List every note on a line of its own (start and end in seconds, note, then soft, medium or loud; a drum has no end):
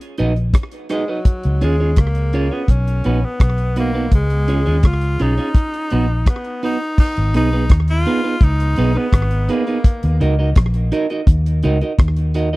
0.01 closed hi-hat medium
0.18 0.53 A#1 medium
0.18 0.32 D#4 loud
0.18 0.32 F#4 loud
0.18 0.32 B4 loud
0.18 0.32 D#5 loud
0.18 closed hi-hat medium
0.36 closed hi-hat soft
0.54 kick loud
0.54 cross-stick loud
0.54 closed hi-hat medium
0.71 closed hi-hat soft
0.89 1.12 G#3 medium
0.89 1.03 D#4 medium
0.89 1.04 F#4 medium
0.89 1.04 B4 medium
0.89 1.04 D#5 loud
0.89 cross-stick medium
0.89 closed hi-hat medium
1.08 1.62 F#3 medium
1.08 1.19 D#4 medium
1.08 1.19 F#4 medium
1.08 1.19 B4 medium
1.08 1.18 D#5 medium
1.25 kick loud
1.25 closed hi-hat medium
1.43 1.61 C#2 medium
1.43 closed hi-hat medium
1.61 1.96 D#2 loud
1.61 2.01 G#3 medium
1.61 1.75 C#4 medium
1.61 1.75 F4 medium
1.61 1.75 G#4 medium
1.61 1.75 C#5 loud
1.61 closed hi-hat medium
1.80 1.91 C#4 medium
1.80 1.90 F4 medium
1.80 1.90 G#4 medium
1.80 1.90 C#5 medium
1.96 2.49 C#2 loud
1.96 2.55 A#3 medium
1.96 kick loud
1.96 cross-stick loud
1.96 closed hi-hat medium
2.15 closed hi-hat soft
2.33 2.47 C#4 medium
2.33 2.47 F4 medium
2.33 2.47 G#4 medium
2.33 2.47 C#5 loud
2.33 closed hi-hat medium
2.51 2.72 B3 medium
2.51 2.62 C#4 soft
2.51 2.62 F4 medium
2.51 2.62 G#4 medium
2.51 2.62 C#5 medium
2.68 3.03 B1 loud
2.68 3.27 C#4 medium
2.68 kick loud
2.68 closed hi-hat medium
2.87 closed hi-hat medium
3.04 3.23 A#1 medium
3.04 3.18 B3 medium
3.04 3.18 D#4 medium
3.04 3.19 F#4 medium
3.04 3.19 B4 loud
3.04 closed hi-hat medium
3.25 3.77 B3 loud
3.40 4.09 B1 medium
3.40 kick loud
3.40 cross-stick loud
3.40 closed hi-hat medium
3.58 closed hi-hat soft
3.76 4.11 A#3 loud
3.76 3.90 B3 medium
3.76 3.90 D#4 medium
3.76 3.90 F#4 medium
3.76 3.90 B4 loud
3.76 closed hi-hat medium
3.94 4.05 B3 medium
3.94 4.05 D#4 medium
3.94 4.05 F#4 medium
3.94 4.05 B4 medium
4.12 4.64 C#2 loud
4.12 4.88 G#3 loud
4.12 kick loud
4.12 closed hi-hat medium
4.30 closed hi-hat medium
4.48 4.61 C#4 medium
4.48 4.62 F4 medium
4.48 4.62 G#4 medium
4.48 4.62 C#5 medium
4.48 closed hi-hat medium
4.66 4.84 D#2 medium
4.66 4.77 C#4 medium
4.66 4.77 F4 medium
4.66 4.77 G#4 medium
4.66 4.76 C#5 medium
4.66 closed hi-hat soft
4.83 5.18 C#2 medium
4.83 5.23 F4 loud
4.83 kick loud
4.83 cross-stick loud
4.83 closed hi-hat medium
5.01 closed hi-hat medium
5.19 5.37 B1 medium
5.19 5.33 C#4 loud
5.19 6.28 D#4 loud
5.19 5.33 F4 medium
5.19 5.34 G#4 loud
5.19 5.34 C#5 loud
5.19 closed hi-hat medium
5.37 5.49 C#4 medium
5.37 5.49 F4 medium
5.37 5.48 G#4 medium
5.37 5.48 C#5 medium
5.37 closed hi-hat soft
5.55 kick loud
5.55 closed hi-hat medium
5.74 closed hi-hat medium
5.90 6.26 A#1 medium
5.90 6.05 B3 medium
5.90 6.05 D#4 medium
5.90 6.05 F#4 medium
5.90 6.05 B4 medium
5.90 closed hi-hat medium
6.26 6.61 B3 medium
6.26 kick loud
6.26 cross-stick loud
6.26 closed hi-hat loud
6.44 closed hi-hat soft
6.63 6.76 B3 medium
6.63 6.76 D#4 medium
6.63 6.97 D#4 loud
6.63 6.77 F#4 medium
6.63 6.77 B4 medium
6.63 open hi-hat medium
6.98 7.32 D#4 loud
6.98 kick loud
6.98 crash loud
7.17 7.35 G#1 medium
7.17 closed hi-hat medium
7.34 7.69 B1 loud
7.34 7.48 B3 medium
7.34 7.48 D#4 medium
7.34 7.76 D#4 loud
7.34 7.48 G#4 medium
7.34 7.48 B4 medium
7.34 closed hi-hat medium
7.53 7.64 B3 soft
7.53 7.63 D#4 medium
7.53 7.63 G#4 medium
7.53 7.63 B4 medium
7.69 8.04 D#2 medium
7.69 kick loud
7.69 cross-stick loud
7.69 closed hi-hat loud
7.88 8.45 F4 loud
7.88 closed hi-hat medium
8.06 8.20 B3 medium
8.06 8.20 D#4 medium
8.06 8.20 G#4 loud
8.06 8.20 B4 medium
8.06 closed hi-hat medium
8.24 8.35 B3 soft
8.24 8.35 D#4 medium
8.24 8.34 G#4 medium
8.24 8.34 B4 medium
8.41 8.76 C#2 loud
8.41 8.99 D#4 loud
8.41 kick loud
8.41 closed hi-hat medium
8.60 closed hi-hat medium
8.76 8.95 B1 medium
8.76 8.91 B3 loud
8.76 8.91 D#4 medium
8.76 8.91 G#4 medium
8.76 8.91 B4 loud
8.76 closed hi-hat medium
8.95 9.06 B3 medium
8.95 9.53 B3 loud
8.95 9.06 D#4 medium
8.95 9.06 G#4 medium
8.95 9.06 B4 medium
9.13 9.47 G#1 medium
9.13 kick loud
9.13 cross-stick loud
9.13 closed hi-hat loud
9.31 closed hi-hat soft
9.49 10.21 A#3 medium
9.49 9.62 B3 medium
9.49 9.63 D#4 medium
9.49 9.63 G#4 medium
9.49 9.63 B4 loud
9.49 closed hi-hat medium
9.67 9.78 B3 medium
9.67 9.78 D#4 medium
9.67 9.78 G#4 medium
9.67 9.77 B4 medium
9.67 closed hi-hat soft
9.84 kick loud
9.84 closed hi-hat loud
10.03 10.20 D#2 loud
10.03 closed hi-hat medium
10.21 10.55 C#2 loud
10.21 10.34 D#4 medium
10.21 10.34 F#4 medium
10.21 10.34 A#4 medium
10.21 10.35 D#5 medium
10.21 closed hi-hat medium
10.39 10.50 D#4 medium
10.39 10.49 F#4 medium
10.39 10.49 A#4 medium
10.39 10.49 D#5 medium
10.56 10.91 A#1 loud
10.56 kick loud
10.56 cross-stick loud
10.56 closed hi-hat loud
10.74 closed hi-hat medium
10.92 11.05 D#4 loud
10.92 11.06 F#4 loud
10.92 11.06 A#4 loud
10.92 11.06 D#5 loud
10.92 closed hi-hat medium
11.10 11.21 D#4 medium
11.10 11.21 F#4 medium
11.10 11.21 A#4 medium
11.10 11.20 D#5 medium
11.10 closed hi-hat soft
11.27 11.62 D#2 loud
11.27 kick loud
11.27 closed hi-hat medium
11.46 closed hi-hat medium
11.63 11.81 C#2 medium
11.63 11.77 D#4 loud
11.63 11.77 F#4 loud
11.63 11.77 A#4 loud
11.63 11.78 D#5 loud
11.63 closed hi-hat medium
11.81 11.92 D#4 medium
11.81 11.92 F#4 medium
11.81 11.92 A#4 medium
11.81 11.92 D#5 medium
11.81 closed hi-hat soft
11.99 12.56 D#2 medium
11.99 kick loud
11.99 cross-stick loud
11.99 closed hi-hat loud
12.17 closed hi-hat medium
12.34 12.48 D#4 medium
12.34 12.48 F#4 medium
12.34 12.49 A#4 medium
12.34 12.49 D#5 medium
12.34 closed hi-hat medium
12.53 12.56 A#4 medium
12.53 12.56 D#5 medium